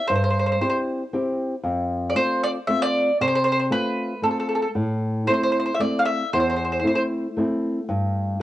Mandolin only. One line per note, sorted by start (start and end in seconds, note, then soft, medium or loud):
0.08 0.14 C5 medium
0.16 0.23 C5 soft
0.24 0.29 C5 medium
0.31 0.38 C5 soft
0.39 0.45 C5 soft
0.46 0.51 C5 soft
0.52 0.59 C5 soft
0.62 0.68 C5 medium
0.70 0.76 C5 medium
2.10 2.15 D5 medium
2.16 2.41 C5 medium
2.43 2.50 D5 medium
2.67 2.80 E5 medium
2.82 3.17 D5 medium
3.21 3.26 C5 medium
3.28 3.34 C5 medium
3.35 3.42 C5 medium
3.44 3.50 C5 medium
3.52 3.58 C5 medium
3.59 3.65 C5 soft
3.72 4.20 B4 medium
4.24 4.30 A4 medium
4.31 4.38 A4 soft
4.40 4.47 A4 soft
4.49 4.54 A4 soft
4.55 4.61 A4 medium
4.62 4.69 A4 soft
5.27 5.33 C5 medium
5.34 5.42 C5 soft
5.43 5.51 C5 medium
5.52 5.58 C5 soft
5.60 5.65 C5 medium
5.66 5.73 C5 medium
5.75 5.80 E5 medium
5.80 6.00 D5 medium
5.99 6.05 F5 medium
6.05 6.29 E5 medium
6.33 6.39 C5 medium
6.40 6.47 C5 soft
6.50 6.55 C5 medium
6.56 6.63 C5 soft
6.65 6.71 C5 soft
6.72 6.78 C5 soft
6.79 6.85 C5 soft
6.87 6.94 C5 soft
6.95 7.02 C5 medium